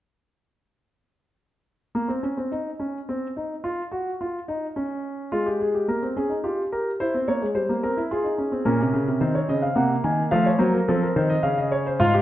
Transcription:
1.95 A#3
2.08 C4
2.23 C#4
2.37 C4
2.52 D#4
2.80 C#4
3.09 C4
3.37 D#4
3.64 F4
3.92 F#4
4.21 F4
4.48 D#4
4.76 C#4
5.32 G#3 F4
5.46 G4
5.60 G#4
5.74 G4
5.88 A#3 A#4
6.03 C4
6.16 C#4 G#4
6.29 D#4
6.44 F4 G4
6.72 G4 A#4
7.00 E4 C5
7.14 C4
7.28 A#3 C#5
7.42 G#3
7.55 G3 C5
7.69 A#3
7.83 C4 A#4
7.97 E4
8.11 F4 G#4
8.24 D#4
8.38 C#4
8.52 C4
8.65 A#2 C#4 A#4
8.80 C3
8.93 C#3
9.08 C3
9.21 D#3 C4 C5
9.35 C#5
9.49 C#3 D#5
9.62 F5
9.76 C3 A#3 F#5
10.04 D#3 G#5
10.31 F3 A3 F5
10.46 C#5
10.59 F#3 A#3 C5
10.74 A#4
10.88 F3 C4 A4
11.02 A#4
11.16 D#3 C5
11.29 D#5
11.43 C#3 C#4 F5
11.58 D#5
11.72 C#5
11.87 C5
12.00 G#2 F4 F5
12.14 G4

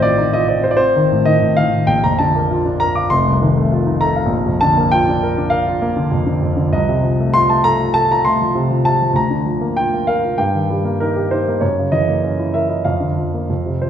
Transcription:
Already playing: A1 A2 D#3 C4 C5 D#5 F5
0.02 F4 D5
0.18 D#4
0.33 F4 D#5
0.48 C4 D5
0.64 F4 C5
0.71 D5
0.77 C4 C5
0.96 D#3
1.12 A2
1.26 D#3 D#5
1.41 A2
1.57 D#3 F5
1.72 A2
1.87 A#1 G5
2.04 F2 A#5
2.19 D3 A5
2.35 A#3
2.51 F4
2.66 D4
2.80 A#4 A#5
2.95 F5 D6
3.10 F1 C6
3.26 C2
3.41 D#3
3.57 A3
3.72 F4
3.87 D#4
4.01 A4 A#5
4.16 F5
4.26 A#1
4.46 F2
4.61 D3 A5
4.77 A#3
4.92 F4 G5
5.08 D4
5.23 A#4
5.38 D4
5.50 A#4 F5
5.67 F4
5.82 A#3
5.96 D3
6.12 F2
6.26 D3
6.42 F2
6.57 D3
6.73 C2 D#5
6.88 C3
7.03 F3
7.20 A3
7.34 F4 C6
7.49 A3 A5
7.64 A4 A#5
7.80 F4
7.94 A4 A5
8.11 F4 A#5
8.25 A3 C6
8.41 F3
8.55 C3
8.70 F3
8.85 C3 A5
9.02 F3
9.13 D2 A#5
9.30 D3
9.46 F3
9.61 A#3
9.77 F4 G5
9.93 A#3
10.07 A#4 F5
10.24 F4
10.38 G2 G5
10.54 D#3
10.70 G3
10.85 A#3
11.00 D#4 A#4
11.16 G4
11.31 D#4 C5
11.48 A#3
11.61 F#2 C#5
11.78 C#3
11.92 E3 D#5
12.08 A#3
12.23 C#4
12.39 E4
12.54 A#4 E5
12.69 E4 D#5
12.85 F2 F5
13.00 D3
13.17 F3
13.34 A#3
13.50 F2
13.66 C3
13.82 F3 C5

